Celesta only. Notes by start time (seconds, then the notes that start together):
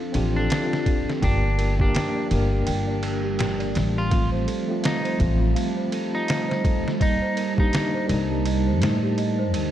1.22 G5
1.43 D5
1.58 A#4
1.79 G4
1.94 G5
2.15 D5
2.30 A#4
2.52 G4
2.66 G5
2.87 D5
3.02 A#4
3.23 G4
3.38 G5
3.59 D5
3.75 A#4
3.96 G4
4.11 F5
4.32 C5
4.46 A4
4.68 F4
4.83 F5
5.04 C5
5.19 A4
5.40 F4
5.55 F5
5.76 C5
5.92 A4
6.13 F4
6.28 F5
6.49 C5
6.64 A4
6.85 F4
7.00 D#5
7.21 C5
7.37 A#4
7.58 G4
7.94 C5
8.31 G4
8.45 D#5
8.67 C5
8.81 A#4
9.03 G4
9.18 D#5
9.39 C5
9.53 A#4